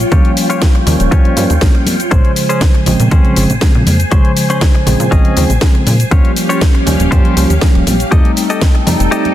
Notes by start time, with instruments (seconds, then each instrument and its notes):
Already playing: string machine F4 C#5 G5
0.00 shaker
0.11 analog synth bass D#2, tine electric piano F3 G3 A#3 C#4, clean electric guitar F4 G4 C#5, kick, closed hi-hat, shaker
0.24 closed hi-hat, tambourine
0.36 open hi-hat, tambourine, shaker
0.49 clean electric guitar F4 G4 C#5, closed hi-hat, shaker
0.62 kick, snare, closed hi-hat, tambourine, high conga, shaker
0.74 muted clean electric guitar stroke, closed hi-hat, tambourine
0.86 analog synth bass D#2, tine electric piano F3 G3 A#3 C#4, muted clean electric guitar stroke, open hi-hat, tambourine, low conga, shaker
0.99 analog synth bass D#1, closed hi-hat, tambourine, shaker
1.11 analog synth bass D#2, tine electric piano F3 G3 A#3 C#4, clean electric guitar F4 G4 C#5, kick, closed hi-hat, shaker
1.25 closed hi-hat, tambourine, high conga
1.36 analog synth bass G2, tine electric piano F3 G3 A#3 C#4, open hi-hat, shaker
1.50 analog synth bass D#2, closed hi-hat, tambourine, shaker
1.61 analog synth bass C#2, tine electric piano F3 G3 A#3 C#4, kick, snare, closed hi-hat, shaker
1.74 muted clean electric guitar stroke, closed hi-hat, tambourine
1.86 tine electric piano F3 G3 A#3 C4, open hi-hat, tambourine, high conga, shaker
2.00 closed hi-hat, shaker
2.11 analog synth bass A#1, tine electric piano C#3 F3 G#3 C5, clean electric guitar C#4 G#4 C5, string machine C5 G#5, kick, closed hi-hat, shaker
2.24 closed hi-hat, tambourine
2.35 open hi-hat, tambourine, shaker
2.49 clean electric guitar C#4 G#4 C5, closed hi-hat, shaker
2.61 kick, snare, closed hi-hat, tambourine, high conga, shaker
2.74 muted clean electric guitar stroke, closed hi-hat
2.86 analog synth bass A#1, tine electric piano C#3 F3 G#3 C4, muted clean electric guitar stroke, open hi-hat, tambourine, low conga, shaker
3.00 analog synth bass A#2, closed hi-hat, shaker
3.11 analog synth bass D#2, tine electric piano C#3 F3 G#3 C4, clean electric guitar C#4 G#4 C5, kick, closed hi-hat, shaker
3.24 closed hi-hat, tambourine, high conga
3.36 analog synth bass G#1, tine electric piano C#3 F3 G#3 C4, open hi-hat, shaker
3.49 analog synth bass A#1, closed hi-hat, tambourine, shaker
3.61 tine electric piano C#3 F3 G#3 C4, kick, snare, closed hi-hat, shaker
3.75 analog synth bass A#2, muted clean electric guitar stroke, closed hi-hat, tambourine
3.86 analog synth bass F2, tine electric piano C#3 F3 G#3 A#3, open hi-hat, tambourine, high conga, shaker
4.00 closed hi-hat, tambourine, shaker
4.11 analog synth bass A#1, tine electric piano C#3 F3 G#3 C5, clean electric guitar C#4 G#4 C5, kick, closed hi-hat, tambourine, shaker
4.25 closed hi-hat, tambourine
4.36 open hi-hat, tambourine, shaker
4.49 clean electric guitar C#4 G#4 C5, closed hi-hat, tambourine, shaker
4.61 kick, snare, closed hi-hat, tambourine, high conga, shaker
4.75 muted clean electric guitar stroke, closed hi-hat, tambourine
4.86 analog synth bass A#1, tine electric piano C#3 F3 G#3 C4, muted clean electric guitar stroke, open hi-hat, tambourine, low conga, shaker
4.99 analog synth bass A#2, closed hi-hat, tambourine, shaker
5.11 analog synth bass A#1, tine electric piano C#3 F3 G#3 C4, clean electric guitar C#4 G#4 D#5, kick, closed hi-hat, tambourine, shaker
5.24 closed hi-hat, tambourine, high conga
5.36 analog synth bass D#2, tine electric piano C#3 F3 G#3 C4, open hi-hat, tambourine, shaker
5.50 analog synth bass A#1, closed hi-hat, tambourine, shaker
5.61 tine electric piano C#3 F3 G#3 C4, kick, snare, closed hi-hat, shaker
5.75 muted clean electric guitar stroke, closed hi-hat, tambourine
5.86 analog synth bass A#2, tine electric piano C#3 F3 G#3 A#3, open hi-hat, tambourine, high conga, shaker
6.00 closed hi-hat, tambourine, shaker
6.11 analog synth bass D#2, tine electric piano F3 G3 A#3 C#4, string machine C#4 G4 F5, clean electric guitar F4 G4 C#5, kick, closed hi-hat, shaker
6.25 closed hi-hat, tambourine
6.36 open hi-hat, tambourine, shaker
6.49 clean electric guitar F4 G4 C#5, closed hi-hat, tambourine, shaker
6.61 kick, snare, closed hi-hat, tambourine, high conga, shaker
6.74 muted clean electric guitar stroke, closed hi-hat, tambourine
6.86 analog synth bass D#2, tine electric piano F3 G3 A#3 C#4, muted clean electric guitar stroke, open hi-hat, tambourine, low conga, shaker
7.00 analog synth bass D#1, closed hi-hat, tambourine, shaker
7.11 analog synth bass G2, tine electric piano F3 G3 A#3 C#4, clean electric guitar F4 G4 C5, kick, closed hi-hat, tambourine, shaker
7.25 closed hi-hat, tambourine, high conga
7.36 analog synth bass C#2, tine electric piano F3 G3 A#3 C#4, open hi-hat, tambourine, shaker
7.50 analog synth bass D#2, closed hi-hat, tambourine, shaker
7.61 tine electric piano F3 G3 A#3 C#4, kick, snare, closed hi-hat, shaker
7.74 analog synth bass D#1, muted clean electric guitar stroke, closed hi-hat, tambourine
7.86 analog synth bass A#1, tine electric piano F3 G3 A#3 C4, open hi-hat, tambourine, high conga, shaker
8.00 closed hi-hat, tambourine, shaker
8.11 analog synth bass F2, tine electric piano G3 A3 C4 D#4, string machine D#4 A4 G5, clean electric guitar G4 A4 D#5, kick, closed hi-hat, tambourine, shaker
8.25 closed hi-hat, tambourine
8.36 open hi-hat, tambourine, shaker
8.50 clean electric guitar G4 A4 D#5, closed hi-hat, shaker
8.61 kick, snare, closed hi-hat, tambourine, high conga, shaker
8.75 muted clean electric guitar stroke, closed hi-hat, tambourine
8.86 analog synth bass F2, tine electric piano G3 A3 C4 D#4, muted clean electric guitar stroke, open hi-hat, tambourine, low conga, shaker
9.00 analog synth bass F1, closed hi-hat, tambourine, shaker
9.11 tine electric piano G3 A3 C4 D#4, clean electric guitar G4 A4 D#5, closed hi-hat, tambourine, shaker
9.25 closed hi-hat, tambourine, high conga